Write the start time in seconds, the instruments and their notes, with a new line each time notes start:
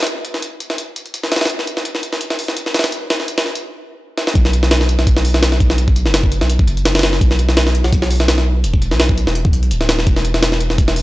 0.03 snare, closed hi-hat
0.07 closed hi-hat
0.25 closed hi-hat
0.34 snare
0.42 closed hi-hat
0.60 closed hi-hat
0.70 snare
0.78 closed hi-hat
0.96 closed hi-hat
1.06 closed hi-hat
1.14 closed hi-hat
1.23 snare
1.32 snare, closed hi-hat
1.36 snare, closed hi-hat
1.41 snare, closed hi-hat
1.45 snare, closed hi-hat
1.50 closed hi-hat
1.59 snare
1.67 closed hi-hat
1.77 snare
1.85 closed hi-hat
1.95 snare
2.03 closed hi-hat
2.13 snare
2.21 closed hi-hat
2.30 snare
2.39 open hi-hat
2.48 snare
2.57 closed hi-hat
2.66 snare
2.74 snare, closed hi-hat
2.79 snare, closed hi-hat
2.84 snare, closed hi-hat
2.92 closed hi-hat
3.10 snare, closed hi-hat
3.20 snare
3.28 closed hi-hat
3.38 snare, closed hi-hat
3.46 snare
3.55 closed hi-hat
4.18 snare
4.27 snare
4.35 sub bass B1, kick, closed hi-hat
4.45 snare
4.53 closed hi-hat
4.63 snare
4.71 snare, closed hi-hat
4.81 snare
4.89 closed hi-hat
4.99 sub bass B1, snare
5.07 kick, closed hi-hat
5.17 snare
5.25 open hi-hat
5.34 snare
5.43 snare, closed hi-hat
5.52 snare
5.60 kick, closed hi-hat
5.70 snare
5.78 closed hi-hat
5.88 kick
5.96 closed hi-hat
6.06 sub bass F#1, snare
6.14 snare, closed hi-hat
6.24 kick
6.32 closed hi-hat
6.41 sub bass B1, snare
6.50 closed hi-hat
6.59 kick
6.68 sub bass F#1, closed hi-hat
6.77 closed hi-hat
6.85 snare, closed hi-hat
6.95 snare, closed hi-hat
6.99 snare, closed hi-hat
7.03 snare, closed hi-hat
7.13 snare
7.21 sub bass B1, kick, closed hi-hat
7.31 snare
7.39 closed hi-hat
7.49 snare
7.57 snare, closed hi-hat
7.67 snare
7.75 closed hi-hat
7.84 sub bass B1, snare
7.93 kick, closed hi-hat
8.02 snare
8.11 open hi-hat
8.20 snare
8.28 snare, closed hi-hat
8.38 snare
8.64 sub bass E1, closed hi-hat
8.74 kick
8.82 closed hi-hat
8.91 sub bass B1, snare
9.00 snare, closed hi-hat
9.09 kick
9.18 closed hi-hat
9.27 sub bass E1, snare
9.35 closed hi-hat
9.45 kick
9.53 sub bass B1, closed hi-hat
9.63 closed hi-hat
9.71 sub bass D1, closed hi-hat
9.81 snare
9.89 snare, closed hi-hat
9.98 sub bass E1, snare
10.07 sub bass E1, kick, closed hi-hat
10.16 snare
10.25 closed hi-hat
10.34 snare
10.43 snare, closed hi-hat
10.52 snare
10.61 closed hi-hat
10.70 sub bass E1, snare
10.78 kick, closed hi-hat
10.88 snare
10.96 open hi-hat